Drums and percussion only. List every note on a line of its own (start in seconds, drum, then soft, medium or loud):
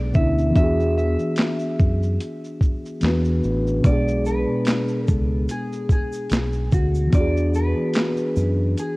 0.14 kick loud
0.14 shaker soft
0.38 shaker soft
0.56 kick loud
0.56 closed hi-hat medium
0.56 shaker medium
0.79 shaker medium
0.98 shaker soft
1.19 shaker soft
1.36 snare loud
1.36 clap medium
1.36 closed hi-hat medium
1.36 shaker medium
1.59 shaker soft
1.79 kick medium
1.79 shaker soft
2.03 shaker soft
2.21 closed hi-hat medium
2.21 shaker medium
2.44 shaker soft
2.61 kick medium
2.61 shaker soft
2.85 shaker soft
3.01 snare loud
3.01 clap medium
3.01 closed hi-hat soft
3.01 shaker soft
3.24 shaker soft
3.43 shaker soft
3.67 shaker soft
3.84 kick loud
3.84 closed hi-hat medium
3.84 shaker medium
4.08 shaker medium
4.25 shaker soft
4.65 closed hi-hat medium
4.65 shaker medium
4.67 snare loud
4.67 clap medium
4.67 shaker medium
4.88 shaker soft
5.07 kick medium
5.07 shaker soft
5.49 closed hi-hat medium
5.49 shaker medium
5.73 shaker soft
5.89 kick medium
5.89 shaker soft
6.13 shaker soft
6.30 closed hi-hat soft
6.30 shaker medium
6.32 snare loud
6.32 clap medium
6.32 shaker medium
6.53 shaker soft
6.72 kick loud
6.72 shaker soft
6.72 shaker medium
6.95 shaker soft
7.13 kick loud
7.13 closed hi-hat medium
7.13 shaker medium
7.37 shaker medium
7.54 shaker soft
7.94 closed hi-hat medium
7.94 shaker medium
7.95 snare loud
7.95 clap medium
7.95 shaker medium
8.17 shaker soft
8.36 shaker soft
8.78 closed hi-hat medium
8.78 shaker medium